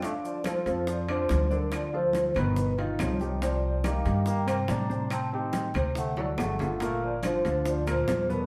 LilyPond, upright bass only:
\new Staff \with { instrumentName = "Upright bass" } { \clef bass \time 4/4 \key d \phrygian \tempo 4 = 142 r4. f,4. d,4~ | d,4. g,,4. c,4~ | c,4. g,4. a,4~ | a,4. d,4. g,,4~ |
g,,4. d,4. e,4 | }